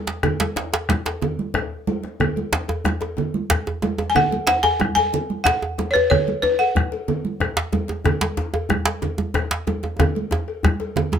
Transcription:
0.07 bombo rim, djembe slap, high conga
0.23 bombo rim, bombo low, cowbell, djembe tone, djembe bass, low conga
0.40 cowbell, djembe slap, high conga
0.56 bombo rim, djembe slap, djembe tone, high conga
0.73 cowbell, djembe slap
0.89 bombo rim, bombo low, djembe slap, high conga, djembe bass
1.06 cowbell, djembe slap
1.22 cowbell, djembe tone, low conga
1.39 high conga
1.54 bombo rim, bombo low, cowbell, djembe slap, high conga, djembe bass
1.87 cowbell, djembe tone, high conga
2.03 bombo rim, djembe slap, high conga
2.20 bombo rim, bombo low, cowbell, djembe slap, djembe bass, low conga
2.36 cowbell, high conga
2.53 djembe slap, djembe tone, high conga
2.68 cowbell, djembe slap, djembe tone, high conga
2.85 bombo rim, djembe tone, high conga, djembe bass
3.01 cowbell, djembe slap, djembe tone
3.17 bombo rim, cowbell, djembe tone, high conga, low conga
3.34 high conga
3.50 bombo rim, bombo low, cowbell, djembe slap, djembe bass
3.66 bombo rim, djembe tone, djembe bass
3.82 bombo rim, cowbell, djembe slap, djembe tone, high conga
3.98 djembe slap, djembe tone
4.10 balafon G#5
4.15 balafon F#5, bombo rim, bombo low, cowbell, djembe bass, low conga
4.31 bombo rim, cowbell, high conga
4.47 balafon F#5, djembe slap, djembe tone, high conga
4.63 balafon G#5, cowbell, djembe tone
4.80 bombo rim, bombo low, djembe tone, high conga, djembe bass
4.95 balafon G#5, cowbell, djembe slap, djembe tone
5.13 cowbell, djembe tone, low conga
5.30 high conga
5.44 balafon F#5, bombo rim, bombo low, cowbell, djembe slap, djembe bass
5.62 djembe tone
5.78 cowbell, djembe tone, high conga
5.91 balafon B4 C#5
5.95 bombo rim, djembe slap, high conga, djembe tone
6.10 balafon C#5, bombo rim, bombo low, cowbell, djembe bass, low conga
6.27 bombo rim, cowbell, high conga
6.42 balafon B4, bombo rim, djembe slap, djembe tone, high conga
6.59 balafon F#5, cowbell
6.75 bombo rim, bombo low, high conga, djembe bass
6.92 cowbell, djembe slap
7.08 cowbell, djembe tone, low conga
7.25 high conga
7.40 bombo rim, bombo low, cowbell, djembe slap, high conga, djembe bass
7.57 djembe slap
7.72 cowbell, djembe tone, high conga
7.88 bombo rim, djembe slap, djembe tone, high conga
8.04 bombo rim, bombo low, cowbell, djembe tone, djembe bass, low conga
8.21 cowbell, djembe slap, high conga
8.37 bombo rim, djembe slap, djembe tone, high conga
8.53 cowbell, djembe tone
8.69 bombo rim, bombo low, djembe tone, high conga, djembe bass
8.86 cowbell, djembe slap
9.02 cowbell, djembe tone, low conga
9.18 djembe tone, high conga
9.34 bombo rim, bombo low, cowbell, djembe slap, djembe tone, djembe bass
9.51 djembe slap
9.67 cowbell, djembe tone, high conga
9.83 bombo rim, djembe slap, djembe tone, high conga
9.99 bombo rim, bombo low, cowbell, djembe tone, high conga, djembe bass, low conga
10.15 cowbell, high conga
10.31 djembe slap, djembe tone, high conga
10.48 bombo rim, cowbell
10.63 bombo rim, bombo low, djembe tone, high conga, djembe bass
10.80 cowbell, djembe slap
10.96 bombo rim, cowbell, djembe slap, djembe tone, high conga, low conga
11.12 djembe slap, high conga, djembe tone

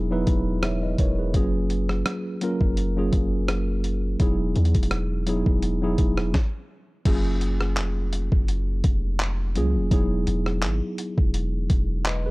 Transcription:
Already playing: 808-style bass E1, tine electric piano F#3 B3 D#4 E4 F#4 G#4 A#4
0.10 tine electric piano F#3 B3 D#4 E4 B4
0.27 808-style bass E1, kick, closed hi-hat
0.63 tine electric piano C#5 E5, cross-stick, closed hi-hat
0.83 tine electric piano B4 D#5
0.98 808-style bass E1, tine electric piano A#4 C#5, kick, closed hi-hat
1.19 tine electric piano G#4 B4
1.34 808-style bass F#1, tine electric piano F#3 A#3 C#4 F4 G#4, kick, closed hi-hat
1.70 closed hi-hat
1.89 cross-stick
2.06 cross-stick, closed hi-hat
2.41 tine electric piano F#3 A#3 C#4 F4 A#4, closed hi-hat
2.61 808-style bass F#1, kick
2.77 closed hi-hat
2.96 tine electric piano F#3 A#3 C#4 F4 G#4
3.13 808-style bass F#1, kick, closed hi-hat
3.48 cross-stick, closed hi-hat
3.84 closed hi-hat
4.20 808-style bass E1, tine electric piano F#3 B3 D#4 E4 G#4, kick, closed hi-hat
4.56 808-style bass E2, closed hi-hat
4.65 closed hi-hat
4.75 808-style bass E1, kick, closed hi-hat
4.83 closed hi-hat
4.91 cross-stick, closed hi-hat
5.27 tine electric piano F#3 B3 D#4 E4 G#4, closed hi-hat
5.46 808-style bass E1, kick
5.62 closed hi-hat
5.82 tine electric piano F#3 B3 D#4 E4 G#4
5.98 808-style bass E1, kick, closed hi-hat
6.17 cross-stick
6.34 kick, snare
7.05 808-style bass F#1, tine electric piano F#3 A#3 C#4 F4 G#4, kick, closed hi-hat, crash
7.41 closed hi-hat
7.61 cross-stick
7.77 808-style bass F1, clap, closed hi-hat
8.13 closed hi-hat
8.32 808-style bass F#1, kick
8.48 closed hi-hat
8.84 808-style bass F1, kick, closed hi-hat
9.20 clap, closed hi-hat
9.55 808-style bass C#2, tine electric piano F#3 A#3 C#4 F4 G#4, closed hi-hat
9.75 808-style bass F1
9.91 808-style bass E1, tine electric piano F#3 B3 D#4 E4 G#4, kick, closed hi-hat
10.27 808-style bass E1, closed hi-hat
10.46 cross-stick
10.63 808-style bass G#1, clap, closed hi-hat
10.98 closed hi-hat
11.18 808-style bass E1, kick
11.34 closed hi-hat
11.70 808-style bass E1, kick, closed hi-hat
12.05 tine electric piano B4 D#5, clap, closed hi-hat
12.26 tine electric piano G#4 B4

